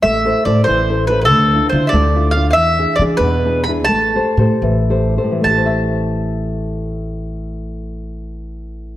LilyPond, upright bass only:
\new Staff \with { instrumentName = "Upright bass" } { \clef bass \time 6/8 \key a \minor \tempo 4. = 86 a,,4 a,8 a,,4. | d,4 d8 d,4. | e,4 e8 e,4. | a,,4 a,8 a,,4. |
a,,2.~ | a,,2. | }